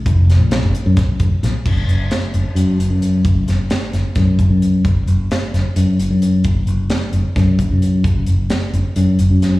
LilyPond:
<<
  \new Staff \with { instrumentName = "Fingered electric bass" } { \clef bass \time 7/8 \key ges \major \tempo 4 = 131 f,,8. bes,,8 ges,,16 r16 ges,16 r8 ges,,16 r16 bes,,16 r16 | ges,,8 ges,,8 r8 ges,,16 r16 ges,8 ges,,16 ges,8. | ges,,8 ges,,8 r8 ges,,16 r16 ges,8 ges,,16 ges,8. | ges,,8 ges,,8 r8 ges,,16 r16 ges,8 ges,,16 ges,8. |
ges,,8 ges,,8 r8 ges,,16 r16 ges,8 ges,,16 ges,8. | ges,,8 ges,,8 r8 ges,,16 r16 ges,8 ges,,16 ges,8. | }
  \new DrumStaff \with { instrumentName = "Drums" } \drummode { \time 7/8 <hh bd>8 <hh sn>8 <hh sn>8 hh8 <hh bd sn>8 <hh bd>8 <hh sn>8 | <cymc bd>8 hh8 <hh sn>8 hh8 hh8 hh8 hh8 | <hh bd>8 <hh sn>8 <hh sn>8 <hh sn>8 <hh bd sn>8 <hh bd>8 hh8 | <hh bd>8 hh8 <hh sn>8 <hh sn>8 hh8 hh8 hh8 |
<hh bd>8 hh8 <hh sn>8 hh8 <hh bd sn>8 <hh bd>8 hh8 | <hh bd>8 hh8 <hh sn>8 hh8 hh8 hh8 <hh sn>8 | }
>>